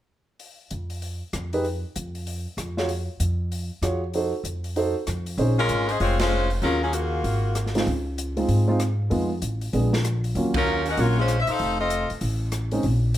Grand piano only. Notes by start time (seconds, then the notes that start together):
1.53 D#4 G4 G#4 B4
2.77 F4 F#4 G#4 C#5
3.83 F4 F#4 G#4 C#5
4.14 D#4 F#4 A4 C5
4.76 D#4 F#4 A4 C5
5.38 C#4 D#4 G#4 C5
6.63 C#4 F4 F#4 G#4
7.75 G#3 C4 D#4 F4
8.37 G#3 C4 D#4 F4
8.68 G#3 C4 D#4 F4
9.10 G#3 B3 D#4 F4
9.73 G#3 B3 D4 G#4
10.36 F#3 A#3 C#4 F4
10.98 F#3 A#3 C#4 F4
12.72 G#3 C4 C#4 D#4